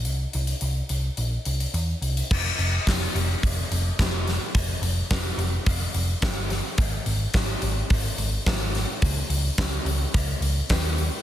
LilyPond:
<<
  \new Staff \with { instrumentName = "Picked electric bass" } { \clef bass \time 4/4 \key c \minor \tempo 4 = 107 c,8 c,8 c,8 c,8 bes,,8 c,8 e,8 c,8 | \key des \lydian f,,8 f,,8 f,,8 f,,8 f,,8 f,,8 f,,4 | f,,8 f,,8 f,,8 f,,8 f,,8 f,,8 g,,4 | aes,,8 aes,,8 aes,,8 aes,,8 aes,,8 aes,,8 aes,,4 |
des,8 des,8 des,8 des,8 des,8 des,8 ees,4 | }
  \new DrumStaff \with { instrumentName = "Drums" } \drummode { \time 4/4 hh8 hh16 hh16 hh8 hh8 hh8 hh16 hh16 hh8 hh16 hh16 | <cymc bd>8 hho8 <hho bd sn>8 hho8 <hho bd>8 hho8 <hho bd sn>8 <hho sn>8 | <hho bd>8 hho8 <hho bd sn>8 hho8 <hho bd>8 hho8 <hho bd sn>8 <hho sn>8 | <hho bd>8 hho8 <hho bd sn>8 hho8 <hho bd>8 hho8 <hho bd sn>8 <hho sn>8 |
<hho bd>8 hho8 <hho bd sn>8 hho8 <hho bd>8 hho8 <hho bd sn>8 hho8 | }
>>